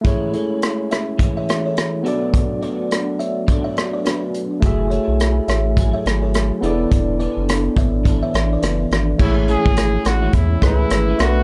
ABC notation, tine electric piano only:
X:1
M:4/4
L:1/8
Q:"Swing 16ths" 1/4=105
K:A
V:1 name="Tine electric piano"
[A,EGc]6- [A,EGc] [B,FAd]- | [B,FAd]6- [B,FAd] z | [A,FGe]6- [A,FGe] [B,EGAd]- | [B,EGAd]6- [B,EGAd] z |
[A,EGc]3 z2 [A,EGB]2 [A,DF_B=B] |]